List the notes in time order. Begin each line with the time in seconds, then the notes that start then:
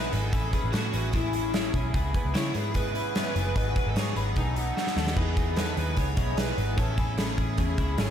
Already playing: G#3 B3 D#4 E4 G#4
0.12 G#1 B3 D#4 E4 G#4 A4, closed hi-hat
0.33 A1 A3 C#4 E4 G#4, kick, closed hi-hat
0.53 C#4 E4 G#4 B4, kick, closed hi-hat
0.64 A1
0.72 A2 A3 C#4 E4 F#4 G#4 A4 C#5, snare, closed hi-hat
0.92 A1 C#4 E4 G#4 B4, closed hi-hat
1.13 A3 C#4 E4 G#4, kick, closed hi-hat
1.33 C#4 E4 G#4, closed hi-hat
1.53 A3 C#4 E4 G#4, snare, closed hi-hat
1.73 B1 C#4 E4 G#4, kick, closed hi-hat
1.93 C#2 C#3 G#3 B3 E4 G#4, kick, closed hi-hat
2.13 B3 E4 G#4 B4, kick, closed hi-hat
2.25 C#2
2.34 C#3 G#3 B3 E4 G#4 C#5, snare, closed hi-hat
2.54 G#2 B3 E4 G#4 B4, closed hi-hat
2.74 C#3 G#3 B3 E4 G#4 B4, kick, closed hi-hat
2.94 B3 C#4 E4 G#4, closed hi-hat
3.14 G#3 B3 C#4 E4 G#4, snare, closed hi-hat
3.35 F#1 B3 E4 G#4, closed hi-hat
3.56 G#1 G#2 D#3 F#3 B3 D#4 G#4 B4, kick, closed hi-hat
3.76 F#3 B3 D#4 G#4 B4, kick, closed hi-hat
3.86 G#1 A4
3.95 G#2 F#3 B3 D#4 G#4 C#5, snare, closed hi-hat
4.16 G#1 F#3 B3 D#4 G#4 B4, closed hi-hat
4.36 B1 B2 D#3 F#3 B3 D#4 G#4 A4, kick, closed hi-hat
4.56 F#3 B3 D#4 F#4 A4, closed hi-hat
4.76 F#3 B3 D#4 F#4 A4, snare
4.87 snare
4.96 D#2 F#3 B3 D#4 F#4 A4, snare
5.07 snare
5.16 E2 E3 G#3 B3 D#4 E4 G#4 B4, kick, crash
5.37 B3 D#4 E4 G#4, kick, closed hi-hat
5.56 E3 G#3 B3 D#4 E4 G#4 A4 B4, snare, closed hi-hat
5.76 D#2 B3 D#4 E4 G#4, closed hi-hat
5.96 C#2 G#3 B3 D#4 E4 G#4 C#5, kick, closed hi-hat
6.00 G#4
6.17 B1 B3 C#4 D#4 E4 G#4, kick, closed hi-hat
6.36 E3 G#3 B3 D#4 E4 G#4 B4, snare, closed hi-hat
6.57 G#1 B3 D#4 G#4, closed hi-hat
6.77 A1 A3 C#4 E4 G#4 A4 C#5 G#5, kick, closed hi-hat
6.98 C#4 E4 G#4, kick, closed hi-hat
7.17 A3 C#4 E4 G#4 A4, snare, closed hi-hat
7.37 A1 C#4 E4 G#4, kick, closed hi-hat
7.57 E2 A3 C#4 E4 G#4, kick, closed hi-hat
7.77 C#2 C#4 E4 G#4, kick, closed hi-hat
7.98 G#1 A3 C#4 E4 G#4, snare, closed hi-hat